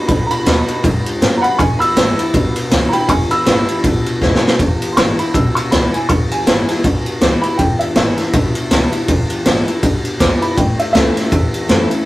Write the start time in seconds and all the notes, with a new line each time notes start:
0.08 B1 B2 B5, kick, ride
0.27 A#5
0.31 B5, ride
0.46 D#2 F#3 B3 D#4 F#4, snare, ride
0.68 D#4 F#4, muted upright bass stroke, ride
0.83 F#2 G#2, kick, ride
1.06 ride
1.21 F#2 A2, snare, ride
1.38 A#5
1.42 F#5 B5, muted upright bass stroke, ride
1.58 E1 E2 G#5 C#6, kick, ride
1.79 B5 E6, ride
1.96 G#1 E3 G#3 B3 E4, snare, ride
2.18 B3 E4, ride
2.34 B1 B2, kick, ride
2.56 ride
2.70 C#2 E3 G#3 B3 E4, snare, ride
2.89 E4 G5 A#5 B5
2.93 B3, muted upright bass stroke, ride
3.08 E1 E2 G#5 C#6, kick, ride
3.31 B5 E6, muted upright bass stroke, ride
3.45 G#1 E3 G#3 B3 E4, snare, ride
3.68 B3 E4, ride
3.84 B1 B2, kick, ride
4.06 ride
4.21 C#2 E3 G#3 B3 E4, kick, snare
4.35 snare
4.43 B3 E4, snare
4.59 E1 E2, kick, ride
4.82 muted upright bass stroke, ride
4.92 C6
4.96 G#1 E3 G#3 B3 E4 C#6, snare, ride
5.19 B3 E4 B5, muted upright bass stroke, ride
5.34 B1 B2 E6, kick, ride
5.55 C#6, muted upright bass stroke, ride
5.71 C#2 E3 G#3 B3 E4 B5, snare, ride
5.93 B3 E4 G#5, muted upright bass stroke, ride
6.09 E1 E2 C#6, kick, ride
6.31 G#5, muted upright bass stroke, ride
6.46 G#1 E3 G#3 B3 E4, snare, ride
6.69 snare, ride
6.84 B1 B2, kick, ride
7.06 ride
7.21 C#2 E3 G#3 B3 E4 D6, snare, ride
7.42 B3 E4 B5, ride
7.58 E1 E2 G5, kick, ride
7.79 E5, muted upright bass stroke, ride
7.96 G#1 E3 G#3 B3 E4 E5, snare, ride
8.18 B3 E4, muted upright bass stroke, snare, ride
8.33 B1 B2, kick, ride
8.55 ride
8.71 C#2 E3 G#3 B3 E4, snare, ride
8.92 B3 E4, ride
9.08 E1 E2, kick, ride
9.30 ride
9.45 G#1 E3 G#3 B3 E4, snare, ride
9.67 B3 E4, muted upright bass stroke, ride
9.83 B1 B2, kick, ride
10.05 muted upright bass stroke, ride
10.19 C#2 E3 G#3 B3 E4 D6, kick, snare, ride
10.41 B3 E4 B5, ride
10.57 A1 A2 G5, kick, ride
10.79 E5, ride
10.93 C#2 E3 A3 C#4 E4 E5, snare, ride
11.15 C#4 E4, muted upright bass stroke, snare, ride
11.31 E2, kick, ride
11.54 muted upright bass stroke, ride
11.68 F#2 E3 A3 C#4 E4, snare, ride
11.90 C#4 E4, muted upright bass stroke, ride